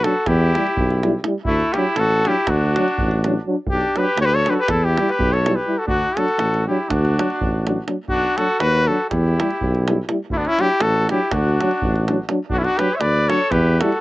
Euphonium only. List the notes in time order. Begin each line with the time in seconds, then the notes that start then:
0.04 D4
0.56 E4
1.04 E4
1.24 E4
1.75 D4
2.26 D4
2.78 D4
3.27 D4
3.49 D4
3.98 D4
4.48 D4
4.99 E4
5.47 E4
5.67 E4
6.17 D4
6.68 D4
7.19 D4
7.67 D4
7.87 D4
8.38 D4
8.88 D4
9.40 E4
9.87 E4
10.09 E4
10.60 D4
11.11 D4
11.62 D4
12.09 D4
12.30 D4
12.79 D4
13.31 D4
13.82 E4